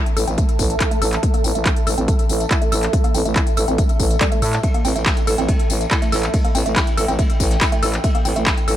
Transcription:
Already playing: ambient pad A4 E5 A5
0.06 closed hi-hat, tambourine
0.17 fm bass A1, synth arpeggio sound A4, open hi-hat, tambourine
0.28 fm bass A1, synth arpeggio sound C4, closed hi-hat, tambourine
0.38 synth arpeggio sound A3, kick, closed hi-hat, tambourine
0.49 closed hi-hat, tambourine
0.59 fm bass A1, kick, open hi-hat, tambourine
0.70 closed hi-hat, tambourine
0.80 synth arpeggio sound E4, kick, clap, closed hi-hat, tambourine
0.91 synth arpeggio sound A3, closed hi-hat, tambourine
1.02 fm bass A1, synth arpeggio sound A4, open hi-hat, tambourine
1.13 clap, closed hi-hat, tambourine
1.23 synth arpeggio sound A3, kick, closed hi-hat, tambourine
1.34 synth arpeggio sound A#3, closed hi-hat, tambourine
1.44 fm bass A1, synth arpeggio sound C4, open hi-hat, tambourine
1.55 fm bass A1, synth arpeggio sound A3, closed hi-hat, tambourine
1.66 synth arpeggio sound E4, kick, clap, closed hi-hat, tambourine
1.76 closed hi-hat, tambourine
1.87 fm bass A1, synth arpeggio sound A4, open hi-hat, tambourine
1.98 fm bass A1, synth arpeggio sound C4, closed hi-hat, tambourine
2.08 synth arpeggio sound A3, kick, closed hi-hat, tambourine
2.19 closed hi-hat, tambourine
2.29 fm bass A1, open hi-hat, tambourine
2.40 closed hi-hat, tambourine
2.51 synth arpeggio sound E4, kick, clap, closed hi-hat, tambourine
2.62 synth arpeggio sound A3, closed hi-hat, tambourine
2.72 fm bass A1, synth arpeggio sound A4, open hi-hat, tambourine
2.83 clap, closed hi-hat
2.93 synth arpeggio sound A3, kick, closed hi-hat, tambourine
3.04 synth arpeggio sound A#3, closed hi-hat, tambourine
3.14 fm bass A1, synth arpeggio sound C4, open hi-hat, tambourine
3.25 fm bass A1, synth arpeggio sound A3, closed hi-hat, tambourine
3.36 synth arpeggio sound E4, kick, clap, closed hi-hat, tambourine
3.47 closed hi-hat, tambourine
3.57 fm bass A1, synth arpeggio sound A4, open hi-hat, tambourine
3.68 fm bass A1, synth arpeggio sound C4, closed hi-hat, tambourine
3.78 synth arpeggio sound A3, kick, closed hi-hat, tambourine
3.89 closed hi-hat, tambourine
4.00 fm bass A1, kick, open hi-hat, tambourine
4.11 closed hi-hat, tambourine
4.21 synth arpeggio sound G3, kick, clap, closed hi-hat, tambourine
4.32 synth arpeggio sound A3, closed hi-hat, tambourine
4.42 fm bass A2, synth arpeggio sound A4, open hi-hat, tambourine
4.53 clap, closed hi-hat, tambourine
4.63 synth arpeggio sound A3, kick, closed hi-hat, ride, tambourine
4.74 synth arpeggio sound A#3, closed hi-hat, tambourine
4.84 fm bass A1, synth arpeggio sound C4, open hi-hat, ride, tambourine
4.96 fm bass A1, synth arpeggio sound A3, closed hi-hat, tambourine
5.06 synth arpeggio sound E4, kick, snare, clap, closed hi-hat, ride, tambourine
5.17 closed hi-hat, tambourine
5.27 fm bass A1, synth arpeggio sound A4, open hi-hat, ride, tambourine
5.38 fm bass A1, synth arpeggio sound C4, closed hi-hat, ride, tambourine
5.48 synth arpeggio sound A3, kick, closed hi-hat, ride, tambourine
5.59 closed hi-hat, tambourine
5.69 fm bass A1, open hi-hat, ride, tambourine
5.81 closed hi-hat, tambourine
5.90 synth arpeggio sound E4, kick, snare, clap, closed hi-hat, ride, tambourine
6.02 synth arpeggio sound A3, ambient pad G5, snare, closed hi-hat, tambourine
6.12 fm bass A1, synth arpeggio sound A4, snare, open hi-hat, ride, tambourine
6.23 clap, closed hi-hat, tambourine
6.33 synth arpeggio sound A3, kick, closed hi-hat, ride, tambourine
6.45 synth arpeggio sound A#3, closed hi-hat, tambourine
6.54 fm bass A1, synth arpeggio sound C4, open hi-hat, ride, tambourine
6.66 fm bass A1, synth arpeggio sound A3, closed hi-hat, tambourine
6.76 synth arpeggio sound E4, kick, snare, clap, closed hi-hat, ride, tambourine
6.87 closed hi-hat, tambourine
6.97 fm bass A1, synth arpeggio sound A4, open hi-hat, ride, tambourine
7.08 fm bass A1, synth arpeggio sound C4, closed hi-hat, tambourine
7.19 synth arpeggio sound A3, kick, closed hi-hat, ride, tambourine
7.30 closed hi-hat, ride, tambourine
7.40 fm bass A1, kick, open hi-hat, ride, tambourine
7.51 snare, closed hi-hat, tambourine
7.61 synth arpeggio sound E4, kick, snare, clap, closed hi-hat, ride, tambourine
7.72 synth arpeggio sound A3, closed hi-hat, ride, tambourine
7.82 fm bass A1, synth arpeggio sound A4, open hi-hat, ride, tambourine
7.93 clap, closed hi-hat, tambourine
8.04 synth arpeggio sound A3, kick, closed hi-hat, ride, tambourine
8.15 synth arpeggio sound A#3, closed hi-hat, tambourine
8.25 fm bass A1, synth arpeggio sound C4, open hi-hat, ride, tambourine
8.36 fm bass A1, synth arpeggio sound A3, closed hi-hat, tambourine
8.46 synth arpeggio sound E4, kick, snare, clap, closed hi-hat, ride, tambourine
8.57 closed hi-hat, tambourine
8.68 fm bass A1, synth arpeggio sound A4, open hi-hat, ride, tambourine

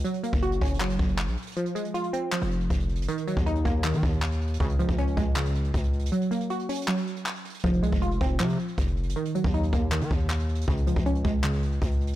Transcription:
0.04 synth pluck F#3, closed hi-hat
0.14 closed hi-hat
0.23 synth pluck A#3, closed hi-hat
0.33 808-style bass F#1, kick, closed hi-hat
0.42 synth pluck F#4, closed hi-hat
0.52 closed hi-hat
0.61 808-style bass F#1, synth pluck C#4, kick, closed hi-hat, open hi-hat
0.68 closed hi-hat
0.74 closed hi-hat
0.80 synth pluck F#3, clap
0.90 closed hi-hat
0.99 808-style bass F#1, kick, closed hi-hat
1.09 closed hi-hat
1.18 clap, closed hi-hat
1.28 808-style bass A#1, closed hi-hat
1.37 closed hi-hat
1.42 closed hi-hat
1.47 closed hi-hat
1.52 closed hi-hat
1.56 synth pluck F3, closed hi-hat
1.66 closed hi-hat
1.75 synth pluck G#3, closed hi-hat
1.85 closed hi-hat
1.94 synth pluck F4, closed hi-hat
2.04 closed hi-hat
2.13 synth pluck C4, closed hi-hat
2.32 synth pluck F3, clap, closed hi-hat
2.42 808-style bass F1, closed hi-hat
2.51 closed hi-hat
2.61 closed hi-hat
2.70 808-style bass F1, kick, closed hi-hat
2.80 closed hi-hat
2.89 closed hi-hat
2.96 808-style bass F#1, closed hi-hat
3.02 closed hi-hat
3.08 synth pluck D#3, closed hi-hat
3.18 closed hi-hat
3.27 synth pluck F#3, closed hi-hat
3.37 808-style bass D#2, kick, closed hi-hat
3.46 synth pluck D#4, closed hi-hat
3.56 closed hi-hat
3.65 808-style bass D#2, synth pluck A#3, kick, closed hi-hat
3.84 synth pluck D#3, clap, closed hi-hat
3.93 808-style bass D#3, closed hi-hat
4.03 808-style bass D#2, kick, closed hi-hat
4.13 closed hi-hat
4.22 clap, closed hi-hat
4.32 closed hi-hat
4.41 closed hi-hat
4.48 closed hi-hat
4.54 closed hi-hat
4.60 808-style bass C#2, synth pluck C#3, kick, closed hi-hat
4.70 closed hi-hat
4.79 synth pluck F3, closed hi-hat
4.89 808-style bass C#2, kick, closed hi-hat
4.98 synth pluck C#4, closed hi-hat
5.07 closed hi-hat
5.17 808-style bass C#2, synth pluck G#3, kick, closed hi-hat
5.36 synth pluck C#3, clap, closed hi-hat
5.45 closed hi-hat
5.55 closed hi-hat
5.64 closed hi-hat
5.74 808-style bass C#2, kick, closed hi-hat
5.84 closed hi-hat
5.93 closed hi-hat
5.99 closed hi-hat
6.06 closed hi-hat
6.12 synth pluck F#3, closed hi-hat
6.21 closed hi-hat
6.31 synth pluck A#3, closed hi-hat
6.41 closed hi-hat
6.50 synth pluck F#4, closed hi-hat
6.59 closed hi-hat
6.69 synth pluck C#4, closed hi-hat, open hi-hat
6.75 closed hi-hat
6.82 closed hi-hat
6.88 synth pluck F#3, clap, closed hi-hat
6.97 closed hi-hat
7.07 closed hi-hat
7.16 closed hi-hat
7.26 clap, closed hi-hat
7.36 closed hi-hat
7.45 closed hi-hat
7.50 closed hi-hat
7.54 closed hi-hat
7.59 closed hi-hat
7.64 808-style bass F1, synth pluck F3, kick, closed hi-hat
7.73 closed hi-hat
7.83 808-style bass C2, synth pluck G#3, closed hi-hat
7.92 808-style bass F1, kick, closed hi-hat
8.02 synth pluck F4, closed hi-hat
8.11 closed hi-hat
8.21 808-style bass F1, synth pluck C4, kick, closed hi-hat
8.40 808-style bass C3, synth pluck F3, clap, closed hi-hat
8.49 closed hi-hat
8.59 closed hi-hat
8.68 closed hi-hat
8.78 808-style bass F1, kick, closed hi-hat
8.88 closed hi-hat
8.97 closed hi-hat
9.03 808-style bass F#1, closed hi-hat
9.10 closed hi-hat
9.16 synth pluck D#3, closed hi-hat
9.25 closed hi-hat
9.35 synth pluck F#3, closed hi-hat
9.44 808-style bass D#2, kick, closed hi-hat
9.54 synth pluck D#4, closed hi-hat
9.63 closed hi-hat
9.73 808-style bass D#2, synth pluck A#3, kick, closed hi-hat
9.92 synth pluck D#3, clap, closed hi-hat
10.01 808-style bass D#3, closed hi-hat
10.11 808-style bass D#2, kick, closed hi-hat
10.20 closed hi-hat
10.30 clap, closed hi-hat
10.40 closed hi-hat
10.49 closed hi-hat
10.55 closed hi-hat
10.61 closed hi-hat
10.68 808-style bass C#2, synth pluck C#3, kick
10.77 closed hi-hat
10.87 synth pluck F3, closed hi-hat
10.96 808-style bass C#2, kick, closed hi-hat
11.06 synth pluck C#4, closed hi-hat
11.15 closed hi-hat
11.24 808-style bass C#2, synth pluck G#3, kick, closed hi-hat
11.44 synth pluck C#3, clap, closed hi-hat
11.53 closed hi-hat
11.63 closed hi-hat
11.72 closed hi-hat
11.82 808-style bass C#2, kick, closed hi-hat
11.91 closed hi-hat
12.01 closed hi-hat
12.07 closed hi-hat

